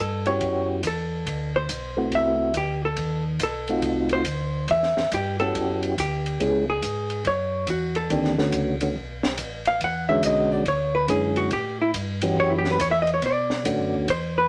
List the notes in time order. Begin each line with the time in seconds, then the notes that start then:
0.00 G2 A4
0.26 B3 C#4 E4 F#4 G4 C#5, ride
0.41 F#2, kick, ride
0.83 E2, kick, hi-hat pedal, ride
0.87 A4
1.26 D2, kick, ride
1.56 C5
1.69 B1, kick, hi-hat pedal, ride
1.97 A3 B3 C4 E4 F#4
2.12 C2 E5, kick, ride
2.54 D2 G4, kick, hi-hat pedal, ride
2.85 A4
2.96 D#2, kick, ride
3.40 B1 A4, kick, hi-hat pedal, ride
3.68 A3 C4 D#4 F4 F#4, ride
3.82 C2, kick, ride
4.09 C5, ride
4.25 D2, kick, hi-hat pedal, ride
4.68 E2 E5, kick, ride
4.83 snare
4.97 E2, snare
5.11 G2 G4, kick, hi-hat pedal, ride
5.39 B3 C#4 E4 F#4 G4 A4, ride
5.55 F#2, kick, ride
5.83 ride
5.98 D2 G4, kick, hi-hat pedal, ride
6.26 ride
6.40 C#2 G#3 B3 C#4 E4 G#4, kick, ride
6.70 G#4
6.82 G#2, kick, hi-hat pedal, ride
7.10 ride
7.25 F#2 C#5, kick, ride
7.67 E2 F#4, kick, hi-hat pedal, ride
7.95 A4, ride
8.10 D2 D#3 A#3 C4 D4 G4, kick, ride
8.24 snare
8.38 D3 A3 B3 C#4 F#4, snare
8.52 C#2, kick, hi-hat pedal, ride
8.81 D3 A3 B3 C#4 F#4, ride
8.96 B1, kick
9.23 snare
9.38 A1, kick, hi-hat pedal, ride
9.65 F5, ride
9.81 E2 F#5, kick, ride
10.09 D3 G#3 B3 C#4 F#4 E5
10.23 B1 D#5, kick, hi-hat pedal, ride
10.52 D5
10.66 D2 C#5, kick, ride
10.95 B4
11.08 F#2 D3 G#3 B3 C#4 E4 G#4, kick, hi-hat pedal, ride
11.36 F#4, ride
11.51 A2 G4, kick, ride
11.82 E4
11.94 G2, kick, hi-hat pedal, ride
12.21 E3 B3 C#4 F#4 G4, ride
12.37 F#2 C#5, kick
12.50 E4
12.58 G4
12.65 snare
12.71 B4
12.79 E2 C#5, kick, hi-hat pedal, ride
12.91 E5
13.02 D#5
13.07 ride
13.14 C#5
13.22 B2 D5, kick, ride
13.50 snare
13.65 A2 D3 A3 B3 C#4 F#4, kick, hi-hat pedal, ride
13.80 F#2
13.94 D2
14.08 E2 C5, kick, ride
14.38 B4